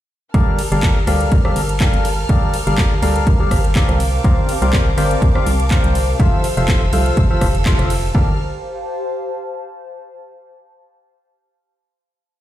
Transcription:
0.34 G1 G3 G4 A4 A#4 D5 F5 A5 F6, kick, closed hi-hat
0.59 F5, open hi-hat, ride
0.72 G1 G3 G4 A4 A#4 C5 D5 F5, closed hi-hat
0.83 kick, clap, closed hi-hat
0.96 A5
1.07 D2 G3 G4 A4 A#4 D5 F5, cross-stick, open hi-hat, ride
1.21 closed hi-hat
1.32 G1, kick, closed hi-hat
1.45 G3 G4 A4 A#4 D5 F5, cross-stick
1.56 G1, open hi-hat, ride
1.69 closed hi-hat
1.80 G3 G4 A4 A#4 D5 F5, kick, clap, closed hi-hat
1.94 G1, closed hi-hat
2.05 open hi-hat, ride
2.29 G1 G3 G4 A4 A#4 D5 F5, kick, closed hi-hat
2.54 open hi-hat, ride
2.67 G1 G3 G4 A4 A#4 D5 F5, closed hi-hat
2.78 kick, clap, closed hi-hat
3.02 D2 G3 G4 A4 A#4 D5 F5, open hi-hat, ride
3.16 closed hi-hat
3.27 G1, kick, closed hi-hat
3.40 G3 G4 A4 A#4 D5 F5
3.51 G1, kick, cross-stick, open hi-hat, ride
3.64 closed hi-hat
3.75 C4 G4 A4 A#4 D5 F5, kick, clap, closed hi-hat
3.89 C2, cross-stick, closed hi-hat
4.00 F5 D6, open hi-hat, ride
4.24 C2 C4 G4 A#4 C5 D5 F5, kick, closed hi-hat
4.49 open hi-hat, ride
4.62 C2 C4 G4 A#4 C5 D5 F5, closed hi-hat
4.73 kick, clap, closed hi-hat
4.98 G1 C4 G4 A#4 C5 D5 F5, cross-stick, open hi-hat, ride
5.11 closed hi-hat
5.22 C2, kick, closed hi-hat
5.35 C4 G4 A#4 C5 D5 F5, cross-stick
5.46 C2, open hi-hat, ride
5.60 closed hi-hat
5.71 C4 G4 A#4 C5 D5 F5, kick, clap, closed hi-hat
5.84 C2, closed hi-hat
5.95 open hi-hat, ride
6.19 F1 F3 F4 A4 C5 E5 F5 E6, kick, closed hi-hat
6.44 open hi-hat, ride
6.57 F1 F3 F4 A4 C5 E5 F5, closed hi-hat
6.68 kick, clap, closed hi-hat
6.93 C2 F3 F4 A4 C5 E5 F5, open hi-hat, ride
7.06 closed hi-hat
7.17 F1, kick, closed hi-hat
7.30 F3 F4 A4 C5 E5 F5
7.41 F1, kick, cross-stick, open hi-hat, ride
7.55 closed hi-hat
7.66 F3 F4 A4 C5 E5 F5, kick, clap, closed hi-hat
7.79 F1, cross-stick, closed hi-hat
7.90 open hi-hat, ride
8.15 G1 G4 A4 A#4 D5 F5 A5 F6, kick
8.22 C5
8.30 F5
8.37 A5

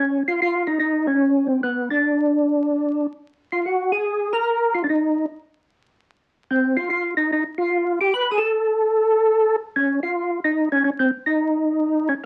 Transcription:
0.00 C#4
0.28 F4
0.42 F4
0.67 D#4
0.80 D#4
1.07 C#4
1.47 C4
1.63 B3
1.91 D4
3.52 F4
3.65 F#4
3.92 G#4
4.33 A#4
4.74 F4
4.84 D4
4.89 D#4
6.51 C4
6.77 F4
6.90 F4
7.17 D#4
7.32 D#4
7.58 F4
8.01 G4
8.14 B4
8.31 G#4
8.38 A4
9.76 C#4
10.03 F4
10.44 D#4
10.72 C#4
10.84 C#4
10.99 C4
11.26 D#4
12.09 C#4

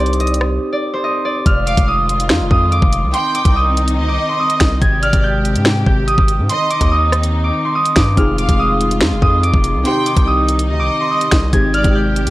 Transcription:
Already playing: C2 C4 D#4 G4 C5 G5
0.00 D5
0.06 closed hi-hat
0.13 closed hi-hat
0.20 D#5, closed hi-hat
0.27 closed hi-hat
0.34 closed hi-hat
0.41 cross-stick
0.73 D5
0.94 C5
1.04 D#5
1.25 D5
1.46 F1 D#3 G#3 F4 F6, kick, closed hi-hat
1.67 F5 D6, closed hi-hat
1.77 F1, kick, closed hi-hat
1.88 D#6
2.09 closed hi-hat
2.20 closed hi-hat
2.29 F2, finger snap, snare
2.40 F1
2.51 F2 D#6, kick
2.72 D6, closed hi-hat
2.82 F1, kick
2.93 closed hi-hat
3.03 C2
3.13 D#3 C4 D#4 G5 C6, closed hi-hat
3.35 D6, closed hi-hat
3.45 C2, kick, closed hi-hat
3.56 D#6
3.77 closed hi-hat
3.88 closed hi-hat
3.98 D2 D#5
4.08 C2 D6
4.29 C6
4.40 D#6
4.50 closed hi-hat
4.60 C2, finger snap, kick, snare, closed hi-hat
4.82 G#1 C3 G#3 G4 G#6, kick, closed hi-hat
5.02 D5 F6, closed hi-hat
5.13 G#1, kick, closed hi-hat
5.24 G6
5.45 closed hi-hat
5.55 G#2, closed hi-hat
5.65 finger snap, snare
5.86 G#1 G6, kick
6.07 D#6, closed hi-hat
6.18 G#1, kick
6.28 closed hi-hat
6.39 G#2
6.49 D#3 C4 D#4 D#5 C6, closed hi-hat
6.70 D6, closed hi-hat
6.81 D#2, kick, closed hi-hat
6.91 D#6
7.12 cross-stick, closed hi-hat
7.23 closed hi-hat
7.44 D6
7.65 C6
7.75 D#6
7.85 closed hi-hat
7.96 G2 D6, finger snap, kick, snare, closed hi-hat
8.16 F1 D#3 G#3 C4 D#4 F4 G#4 F6, kick, closed hi-hat
8.38 F5 D6, closed hi-hat
8.49 F1, kick, closed hi-hat
8.59 D#6
8.81 closed hi-hat
8.91 closed hi-hat
9.01 F2, finger snap, snare
9.12 F1
9.22 F2 D#6, kick
9.43 D6, closed hi-hat
9.54 F1, kick
9.64 closed hi-hat
9.75 C2
9.84 C3 C4 D#4 G4 G5 C6, closed hi-hat
10.06 D6, closed hi-hat
10.17 C2, kick, closed hi-hat
10.27 D#6
10.48 closed hi-hat
10.59 closed hi-hat
10.69 D2 D#5
10.80 C2 D6
11.00 C6
11.11 D#6
11.21 closed hi-hat
11.31 C2, finger snap, kick, snare, closed hi-hat
11.52 G#1 C3 G#3 C4 D#4 G4 G#6, kick, closed hi-hat
11.74 D5 F6, closed hi-hat
11.84 G#1, kick, closed hi-hat
11.95 G6
12.16 closed hi-hat
12.26 G#2, closed hi-hat

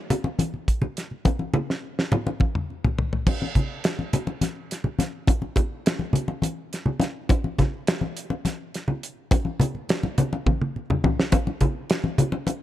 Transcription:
0.10 closed hi-hat, low conga
0.24 muted conga, low conga
0.39 closed hi-hat, high conga, low conga
0.54 low conga
0.68 kick, closed hi-hat
0.82 low conga
0.97 snare, closed hi-hat
1.11 low conga
1.25 kick, closed hi-hat, muted conga
1.39 high conga
1.54 high tom, low conga
1.70 snare
1.99 snare
2.12 mid tom, low conga
2.27 muted conga, low conga
2.40 kick, high conga, low conga
2.55 mid tom, low conga
2.70 low conga
2.84 floor tom, low conga
2.99 floor tom, low conga
3.13 floor tom
3.27 kick, crash, muted conga, low conga
3.42 high conga
3.55 kick, closed hi-hat, low conga
3.84 snare, closed hi-hat
3.99 high conga
4.13 closed hi-hat, low conga
4.27 muted conga
4.41 snare, closed hi-hat, high conga
4.71 snare, closed hi-hat
4.84 low conga
4.99 snare, closed hi-hat, high conga
5.27 kick, closed hi-hat, muted conga, low conga
5.42 high conga
5.56 kick, closed hi-hat, low conga
5.86 snare, closed hi-hat
5.99 high conga
6.13 closed hi-hat, low conga
6.28 muted conga
6.42 closed hi-hat, high conga
6.73 snare, closed hi-hat
6.86 low conga
7.00 snare, closed hi-hat, high conga
7.29 kick, closed hi-hat, muted conga, low conga
7.44 high conga
7.59 kick, snare, closed hi-hat, low conga
7.87 snare, closed hi-hat
8.01 high conga
8.17 closed hi-hat
8.30 muted conga
8.45 snare, closed hi-hat, high conga
8.74 snare, closed hi-hat
8.88 low conga
9.03 closed hi-hat
9.31 kick, closed hi-hat, muted conga, low conga
9.45 high conga
9.60 closed hi-hat, low conga
9.75 low conga
9.89 snare, closed hi-hat, low conga
10.03 high conga, low conga
10.18 closed hi-hat, low conga
10.33 muted conga
10.46 kick, high tom, high conga, low conga
10.61 high tom, low conga
10.76 low conga
10.90 mid tom, low conga
11.04 floor tom, high conga
11.20 snare
11.32 kick, closed hi-hat, muted conga, low conga
11.47 high conga
11.61 kick, closed hi-hat, low conga
11.90 snare, closed hi-hat
12.04 high conga
12.18 closed hi-hat, low conga
12.32 muted conga
12.47 closed hi-hat, high conga

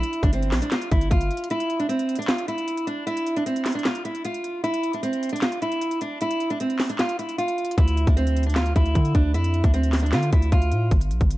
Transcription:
Already playing: E4
0.03 closed hi-hat
0.13 closed hi-hat
0.23 G1 D4, kick, closed hi-hat
0.33 C4, closed hi-hat
0.43 closed hi-hat
0.52 A#1, snare, clap, closed hi-hat, open hi-hat
0.62 D4, closed hi-hat
0.72 F4, snare, clap, closed hi-hat
0.82 closed hi-hat
0.91 G1 E4, kick, closed hi-hat
1.01 closed hi-hat
1.11 G1 F4, kick, closed hi-hat
1.21 closed hi-hat
1.31 closed hi-hat
1.37 closed hi-hat
1.44 closed hi-hat
1.50 E4, closed hi-hat
1.60 closed hi-hat
1.70 closed hi-hat
1.79 D4, closed hi-hat
1.89 C4, closed hi-hat
1.99 closed hi-hat
2.09 closed hi-hat
2.16 D4, closed hi-hat
2.22 closed hi-hat
2.28 F4, snare, clap, closed hi-hat
2.38 closed hi-hat
2.48 E4, closed hi-hat
2.58 closed hi-hat
2.68 closed hi-hat
2.77 closed hi-hat
2.87 D4, closed hi-hat
3.07 E4, closed hi-hat
3.17 closed hi-hat
3.27 closed hi-hat
3.36 D4, closed hi-hat
3.46 C4, closed hi-hat
3.56 closed hi-hat
3.65 snare, clap, closed hi-hat, open hi-hat
3.72 D4, closed hi-hat
3.79 closed hi-hat
3.85 F4, snare, clap, closed hi-hat
3.95 closed hi-hat
4.05 E4, closed hi-hat
4.15 closed hi-hat
4.25 F4, closed hi-hat
4.34 closed hi-hat
4.44 closed hi-hat
4.64 E4, closed hi-hat
4.74 closed hi-hat
4.83 closed hi-hat
4.93 D4, closed hi-hat
5.03 C4, closed hi-hat
5.13 closed hi-hat
5.23 closed hi-hat
5.29 D4, closed hi-hat
5.36 closed hi-hat
5.42 F4, snare, clap, closed hi-hat
5.52 closed hi-hat
5.62 E4, closed hi-hat
5.72 closed hi-hat
5.82 closed hi-hat
5.91 closed hi-hat
6.01 D4, closed hi-hat
6.21 E4, closed hi-hat
6.31 closed hi-hat
6.40 closed hi-hat
6.50 D4, closed hi-hat
6.60 C4, closed hi-hat
6.70 closed hi-hat
6.79 snare, clap, closed hi-hat, open hi-hat
6.89 D4, closed hi-hat
6.99 F4, snare, clap, closed hi-hat
7.09 closed hi-hat
7.19 E4, closed hi-hat
7.29 closed hi-hat
7.38 F4, closed hi-hat
7.48 closed hi-hat
7.58 closed hi-hat
7.65 closed hi-hat
7.71 closed hi-hat
7.78 D2 E4, kick, closed hi-hat
7.88 closed hi-hat
7.97 closed hi-hat
8.07 D2 D4, kick, closed hi-hat
8.17 C4, closed hi-hat
8.27 closed hi-hat
8.37 closed hi-hat
8.43 D4, closed hi-hat
8.50 closed hi-hat
8.56 F4, snare, clap, closed hi-hat
8.66 closed hi-hat
8.76 D2 E4, kick, closed hi-hat
8.86 closed hi-hat
8.95 D3, kick, closed hi-hat
9.05 closed hi-hat
9.15 D2 D4, kick, closed hi-hat
9.34 F2 E4, closed hi-hat
9.44 closed hi-hat
9.54 closed hi-hat
9.64 D2 D4, kick, closed hi-hat
9.74 C4, closed hi-hat
9.83 closed hi-hat
9.93 snare, clap, closed hi-hat, open hi-hat
10.00 D4, closed hi-hat
10.06 closed hi-hat
10.12 D3 F4, snare, clap, closed hi-hat
10.23 closed hi-hat
10.32 D2 E4, kick, closed hi-hat
10.42 closed hi-hat
10.52 D2 F4, kick, closed hi-hat
10.62 closed hi-hat
10.72 A2, closed hi-hat
10.91 G1, kick, closed hi-hat
11.01 closed hi-hat
11.11 A#1, closed hi-hat
11.21 G1, kick, closed hi-hat
11.31 closed hi-hat

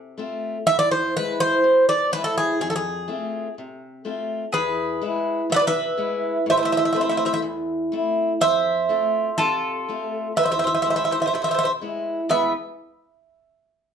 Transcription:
Already playing: C3
0.18 A3 C4 F4
0.66 E2 E5
0.79 D5
0.91 C5
1.16 G#3 B3 E4 B4
1.40 C5
1.64 B2
1.89 D5
2.12 G#3 B3 E4 B4
2.24 A4
2.38 G#4
2.61 F2 G#4
2.70 A4
2.76 G#4
3.08 A3 C4 F4
3.58 C3
4.05 A3 C4 F4
4.52 E2 G#4 B4
5.02 G#3 B3 E4
5.50 B2 E5
5.54 B4 D5
5.59 B4
5.67 B4 E5
5.97 G#3 B3 E4
6.46 A2 E5
6.50 C5
6.57 C5 E5
6.63 C5 E5
6.72 C5 E5
6.77 C5 E5
6.85 C5 E5
6.93 A3 C4 E4 C5 E5
7.01 C5 E5
7.09 C5 E5
7.17 C5 E5
7.25 C5 E5
7.33 C5 E5
7.42 E2
7.92 A3 C4 E4
8.41 F2 C5 E5
8.89 A3 C4 F4
9.38 C3 F4 A4
9.89 A3 C4 F4
10.36 E2 B4 E5
10.43 C5 E5
10.51 C5 E5
10.59 C5 E5
10.64 C5 E5
10.74 C5 E5
10.82 G#3 B3 E4 C5 E5
10.90 C5 E5
10.96 C5 E5
11.04 C5 E5
11.11 C5 E5
11.20 C5 E5
11.26 C5 E5
11.34 B2 C5 E5
11.42 C5 E5
11.48 C5 E5
11.54 C5
11.59 E5
11.63 C5 E5
11.81 G#3 B3 E4
12.29 E2 B2 G#3 B3 E4 B4 E5

